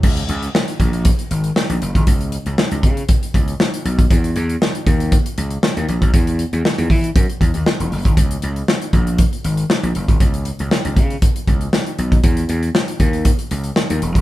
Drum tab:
CC |x---------------|----------------|----------------|----------------|
HH |-xxx-xxxxxxx-xxx|xxxx-xxxxxxx-xxx|xxxx-xxxxxxx-xxx|xxxx-xoxxxxx-xox|
SD |----o-------o---|----o-------o---|----o-------o---|----o-------o---|
BD |o-----o-o------o|o-----o-o-o----o|o-----o-o------o|o-----o-o-o----o|

CC |----------------|----------------|----------------|
HH |xxxx-xxxxxxx-xxx|xxxx-xxxxxxx-xxx|xxxx-xxxxxxx-xxx|
SD |----o-------o---|----o-------o---|----o-------o---|
BD |o-----o-o------o|o-----o-o-o----o|o-----o-o------o|